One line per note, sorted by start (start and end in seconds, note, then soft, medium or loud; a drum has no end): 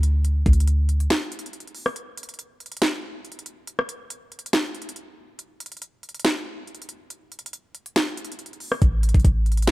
0.00 0.43 D2 loud
0.00 closed hi-hat medium
0.25 closed hi-hat medium
0.46 1.08 D2 loud
0.46 kick loud
0.46 closed hi-hat soft
0.53 closed hi-hat medium
0.60 closed hi-hat medium
0.68 closed hi-hat loud
0.89 closed hi-hat medium
1.00 closed hi-hat medium
1.10 snare loud
1.10 closed hi-hat medium
1.32 closed hi-hat medium
1.39 closed hi-hat medium
1.46 closed hi-hat medium
1.53 closed hi-hat medium
1.60 closed hi-hat medium
1.67 closed hi-hat soft
1.75 open hi-hat medium
1.86 cross-stick medium
1.96 closed hi-hat medium
2.17 closed hi-hat medium
2.23 closed hi-hat medium
2.29 closed hi-hat medium
2.34 closed hi-hat soft
2.39 closed hi-hat loud
2.60 closed hi-hat soft
2.66 closed hi-hat medium
2.72 closed hi-hat medium
2.77 closed hi-hat medium
2.82 snare loud
2.82 closed hi-hat medium
3.25 closed hi-hat soft
3.32 closed hi-hat medium
3.39 closed hi-hat medium
3.46 closed hi-hat medium
3.67 closed hi-hat medium
3.79 cross-stick medium
3.89 closed hi-hat medium
4.10 closed hi-hat loud
4.32 closed hi-hat soft
4.39 closed hi-hat medium
4.46 closed hi-hat medium
4.53 snare loud
4.53 closed hi-hat medium
4.75 closed hi-hat soft
4.82 closed hi-hat medium
4.89 closed hi-hat medium
4.96 closed hi-hat medium
5.39 closed hi-hat medium
5.60 closed hi-hat medium
5.66 closed hi-hat medium
5.72 closed hi-hat medium
5.77 closed hi-hat soft
5.82 closed hi-hat loud
6.03 closed hi-hat soft
6.09 closed hi-hat medium
6.15 closed hi-hat medium
6.20 closed hi-hat medium
6.25 snare loud
6.25 closed hi-hat medium
6.67 closed hi-hat soft
6.75 closed hi-hat medium
6.82 closed hi-hat medium
6.89 closed hi-hat medium
7.10 closed hi-hat medium
7.32 closed hi-hat medium
7.39 closed hi-hat medium
7.46 closed hi-hat medium
7.53 closed hi-hat loud
7.75 closed hi-hat medium
7.86 closed hi-hat medium
7.96 snare loud
7.96 closed hi-hat medium
8.17 closed hi-hat medium
8.25 closed hi-hat medium
8.32 closed hi-hat medium
8.39 closed hi-hat medium
8.46 closed hi-hat medium
8.53 closed hi-hat soft
8.60 open hi-hat medium
8.72 cross-stick medium
8.82 9.13 A1 loud
8.82 kick loud
8.82 closed hi-hat medium
9.03 closed hi-hat medium
9.09 closed hi-hat medium
9.14 9.24 A1 loud
9.14 kick medium
9.14 closed hi-hat medium
9.20 closed hi-hat soft
9.25 9.71 A1 loud
9.25 kick loud
9.25 closed hi-hat loud
9.46 closed hi-hat soft
9.52 closed hi-hat medium
9.57 closed hi-hat medium
9.62 closed hi-hat medium
9.67 snare loud
9.67 closed hi-hat medium